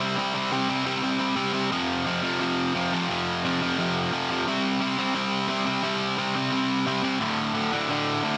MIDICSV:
0, 0, Header, 1, 2, 480
1, 0, Start_track
1, 0, Tempo, 343249
1, 489, Time_signature, 4, 2, 24, 8
1, 11712, End_track
2, 0, Start_track
2, 0, Title_t, "Overdriven electric guitar"
2, 0, Program_c, 0, 29
2, 0, Note_on_c, 0, 48, 86
2, 0, Note_on_c, 0, 55, 99
2, 2, Note_on_c, 0, 60, 97
2, 216, Note_off_c, 0, 48, 0
2, 224, Note_off_c, 0, 55, 0
2, 233, Note_on_c, 0, 48, 73
2, 241, Note_on_c, 0, 55, 77
2, 246, Note_off_c, 0, 60, 0
2, 252, Note_on_c, 0, 60, 83
2, 456, Note_off_c, 0, 48, 0
2, 463, Note_off_c, 0, 55, 0
2, 467, Note_off_c, 0, 60, 0
2, 473, Note_on_c, 0, 48, 89
2, 480, Note_on_c, 0, 55, 90
2, 484, Note_on_c, 0, 60, 93
2, 704, Note_off_c, 0, 48, 0
2, 716, Note_off_c, 0, 55, 0
2, 718, Note_off_c, 0, 60, 0
2, 720, Note_on_c, 0, 48, 74
2, 732, Note_on_c, 0, 55, 92
2, 735, Note_on_c, 0, 60, 101
2, 943, Note_off_c, 0, 48, 0
2, 949, Note_off_c, 0, 55, 0
2, 954, Note_off_c, 0, 60, 0
2, 960, Note_on_c, 0, 48, 73
2, 966, Note_on_c, 0, 55, 81
2, 971, Note_on_c, 0, 60, 79
2, 1178, Note_off_c, 0, 48, 0
2, 1190, Note_off_c, 0, 55, 0
2, 1191, Note_off_c, 0, 60, 0
2, 1195, Note_on_c, 0, 48, 83
2, 1207, Note_on_c, 0, 55, 90
2, 1208, Note_on_c, 0, 60, 82
2, 1421, Note_off_c, 0, 48, 0
2, 1430, Note_off_c, 0, 55, 0
2, 1437, Note_off_c, 0, 60, 0
2, 1438, Note_on_c, 0, 48, 84
2, 1447, Note_on_c, 0, 55, 92
2, 1453, Note_on_c, 0, 60, 94
2, 1654, Note_off_c, 0, 48, 0
2, 1663, Note_off_c, 0, 55, 0
2, 1669, Note_off_c, 0, 60, 0
2, 1671, Note_on_c, 0, 48, 82
2, 1680, Note_on_c, 0, 55, 84
2, 1686, Note_on_c, 0, 60, 84
2, 1884, Note_off_c, 0, 48, 0
2, 1891, Note_off_c, 0, 60, 0
2, 1894, Note_off_c, 0, 55, 0
2, 1900, Note_on_c, 0, 48, 90
2, 1908, Note_on_c, 0, 60, 96
2, 1911, Note_on_c, 0, 55, 100
2, 2125, Note_off_c, 0, 48, 0
2, 2131, Note_off_c, 0, 55, 0
2, 2137, Note_off_c, 0, 60, 0
2, 2142, Note_on_c, 0, 48, 75
2, 2148, Note_on_c, 0, 55, 79
2, 2154, Note_on_c, 0, 60, 84
2, 2384, Note_off_c, 0, 48, 0
2, 2387, Note_off_c, 0, 55, 0
2, 2390, Note_off_c, 0, 60, 0
2, 2394, Note_on_c, 0, 41, 93
2, 2404, Note_on_c, 0, 48, 105
2, 2406, Note_on_c, 0, 53, 99
2, 2865, Note_off_c, 0, 48, 0
2, 2875, Note_off_c, 0, 41, 0
2, 2881, Note_on_c, 0, 41, 80
2, 2882, Note_on_c, 0, 48, 90
2, 2889, Note_off_c, 0, 53, 0
2, 2895, Note_on_c, 0, 53, 93
2, 3102, Note_off_c, 0, 48, 0
2, 3112, Note_off_c, 0, 41, 0
2, 3118, Note_on_c, 0, 41, 72
2, 3119, Note_on_c, 0, 48, 76
2, 3124, Note_off_c, 0, 53, 0
2, 3130, Note_on_c, 0, 53, 88
2, 3342, Note_off_c, 0, 41, 0
2, 3357, Note_off_c, 0, 48, 0
2, 3359, Note_on_c, 0, 41, 100
2, 3363, Note_off_c, 0, 53, 0
2, 3374, Note_on_c, 0, 48, 108
2, 3380, Note_on_c, 0, 53, 124
2, 3822, Note_off_c, 0, 41, 0
2, 3833, Note_off_c, 0, 48, 0
2, 3836, Note_off_c, 0, 53, 0
2, 3838, Note_on_c, 0, 41, 83
2, 3850, Note_on_c, 0, 48, 82
2, 3853, Note_on_c, 0, 53, 98
2, 4076, Note_off_c, 0, 41, 0
2, 4082, Note_off_c, 0, 48, 0
2, 4084, Note_off_c, 0, 53, 0
2, 4093, Note_on_c, 0, 41, 88
2, 4099, Note_on_c, 0, 48, 87
2, 4101, Note_on_c, 0, 53, 96
2, 4297, Note_off_c, 0, 41, 0
2, 4313, Note_off_c, 0, 48, 0
2, 4314, Note_on_c, 0, 41, 91
2, 4315, Note_off_c, 0, 53, 0
2, 4330, Note_on_c, 0, 48, 102
2, 4332, Note_on_c, 0, 53, 104
2, 4792, Note_off_c, 0, 41, 0
2, 4805, Note_off_c, 0, 48, 0
2, 4807, Note_off_c, 0, 53, 0
2, 4809, Note_on_c, 0, 41, 77
2, 4821, Note_on_c, 0, 48, 93
2, 4824, Note_on_c, 0, 53, 95
2, 5041, Note_off_c, 0, 41, 0
2, 5051, Note_off_c, 0, 48, 0
2, 5054, Note_off_c, 0, 53, 0
2, 5058, Note_on_c, 0, 41, 84
2, 5068, Note_on_c, 0, 48, 81
2, 5070, Note_on_c, 0, 53, 94
2, 5274, Note_off_c, 0, 41, 0
2, 5281, Note_off_c, 0, 48, 0
2, 5283, Note_off_c, 0, 53, 0
2, 5290, Note_on_c, 0, 41, 115
2, 5298, Note_on_c, 0, 48, 101
2, 5300, Note_on_c, 0, 53, 108
2, 5742, Note_off_c, 0, 41, 0
2, 5753, Note_off_c, 0, 48, 0
2, 5758, Note_on_c, 0, 41, 87
2, 5762, Note_off_c, 0, 53, 0
2, 5769, Note_on_c, 0, 48, 97
2, 5778, Note_on_c, 0, 53, 93
2, 5987, Note_off_c, 0, 41, 0
2, 5999, Note_off_c, 0, 48, 0
2, 6004, Note_on_c, 0, 41, 90
2, 6008, Note_off_c, 0, 53, 0
2, 6016, Note_on_c, 0, 48, 88
2, 6024, Note_on_c, 0, 53, 81
2, 6230, Note_off_c, 0, 48, 0
2, 6234, Note_off_c, 0, 41, 0
2, 6244, Note_off_c, 0, 53, 0
2, 6247, Note_on_c, 0, 48, 100
2, 6255, Note_on_c, 0, 55, 113
2, 6262, Note_on_c, 0, 60, 107
2, 6712, Note_off_c, 0, 48, 0
2, 6718, Note_on_c, 0, 48, 82
2, 6724, Note_off_c, 0, 60, 0
2, 6725, Note_off_c, 0, 55, 0
2, 6730, Note_on_c, 0, 60, 104
2, 6731, Note_on_c, 0, 55, 88
2, 6955, Note_off_c, 0, 48, 0
2, 6960, Note_on_c, 0, 48, 73
2, 6962, Note_off_c, 0, 55, 0
2, 6967, Note_off_c, 0, 60, 0
2, 6967, Note_on_c, 0, 55, 95
2, 6972, Note_on_c, 0, 60, 93
2, 7172, Note_off_c, 0, 48, 0
2, 7178, Note_off_c, 0, 55, 0
2, 7186, Note_off_c, 0, 60, 0
2, 7189, Note_on_c, 0, 48, 105
2, 7195, Note_on_c, 0, 55, 119
2, 7203, Note_on_c, 0, 60, 125
2, 7645, Note_off_c, 0, 48, 0
2, 7653, Note_off_c, 0, 55, 0
2, 7662, Note_on_c, 0, 48, 83
2, 7668, Note_off_c, 0, 60, 0
2, 7670, Note_on_c, 0, 55, 87
2, 7685, Note_on_c, 0, 60, 95
2, 7892, Note_off_c, 0, 48, 0
2, 7901, Note_off_c, 0, 55, 0
2, 7903, Note_off_c, 0, 60, 0
2, 7909, Note_on_c, 0, 48, 77
2, 7918, Note_on_c, 0, 55, 87
2, 7919, Note_on_c, 0, 60, 96
2, 8129, Note_off_c, 0, 48, 0
2, 8138, Note_off_c, 0, 55, 0
2, 8146, Note_on_c, 0, 48, 89
2, 8148, Note_off_c, 0, 60, 0
2, 8154, Note_on_c, 0, 55, 96
2, 8165, Note_on_c, 0, 60, 106
2, 8619, Note_off_c, 0, 48, 0
2, 8625, Note_off_c, 0, 55, 0
2, 8629, Note_off_c, 0, 60, 0
2, 8636, Note_on_c, 0, 48, 81
2, 8642, Note_on_c, 0, 55, 82
2, 8645, Note_on_c, 0, 60, 96
2, 8861, Note_off_c, 0, 48, 0
2, 8871, Note_off_c, 0, 55, 0
2, 8877, Note_off_c, 0, 60, 0
2, 8878, Note_on_c, 0, 48, 86
2, 8888, Note_on_c, 0, 55, 76
2, 8894, Note_on_c, 0, 60, 92
2, 9090, Note_off_c, 0, 48, 0
2, 9097, Note_off_c, 0, 55, 0
2, 9101, Note_off_c, 0, 60, 0
2, 9107, Note_on_c, 0, 48, 103
2, 9113, Note_on_c, 0, 55, 109
2, 9118, Note_on_c, 0, 60, 122
2, 9580, Note_off_c, 0, 48, 0
2, 9585, Note_off_c, 0, 55, 0
2, 9594, Note_off_c, 0, 60, 0
2, 9597, Note_on_c, 0, 48, 89
2, 9602, Note_on_c, 0, 55, 91
2, 9610, Note_on_c, 0, 60, 96
2, 9817, Note_off_c, 0, 48, 0
2, 9827, Note_off_c, 0, 55, 0
2, 9828, Note_off_c, 0, 60, 0
2, 9833, Note_on_c, 0, 48, 82
2, 9844, Note_on_c, 0, 55, 89
2, 9845, Note_on_c, 0, 60, 88
2, 10059, Note_off_c, 0, 48, 0
2, 10064, Note_off_c, 0, 55, 0
2, 10065, Note_on_c, 0, 38, 96
2, 10070, Note_on_c, 0, 45, 93
2, 10071, Note_off_c, 0, 60, 0
2, 10077, Note_on_c, 0, 50, 90
2, 10515, Note_off_c, 0, 38, 0
2, 10528, Note_off_c, 0, 45, 0
2, 10532, Note_on_c, 0, 38, 76
2, 10535, Note_off_c, 0, 50, 0
2, 10545, Note_on_c, 0, 45, 94
2, 10552, Note_on_c, 0, 50, 95
2, 10765, Note_off_c, 0, 38, 0
2, 10780, Note_off_c, 0, 50, 0
2, 10781, Note_off_c, 0, 45, 0
2, 10782, Note_on_c, 0, 38, 83
2, 10797, Note_on_c, 0, 50, 84
2, 10798, Note_on_c, 0, 45, 81
2, 11017, Note_off_c, 0, 38, 0
2, 11027, Note_off_c, 0, 45, 0
2, 11033, Note_off_c, 0, 50, 0
2, 11034, Note_on_c, 0, 38, 99
2, 11044, Note_on_c, 0, 45, 99
2, 11049, Note_on_c, 0, 50, 120
2, 11491, Note_off_c, 0, 38, 0
2, 11496, Note_off_c, 0, 45, 0
2, 11508, Note_on_c, 0, 38, 83
2, 11510, Note_off_c, 0, 50, 0
2, 11513, Note_on_c, 0, 45, 96
2, 11526, Note_on_c, 0, 50, 91
2, 11712, Note_off_c, 0, 38, 0
2, 11712, Note_off_c, 0, 45, 0
2, 11712, Note_off_c, 0, 50, 0
2, 11712, End_track
0, 0, End_of_file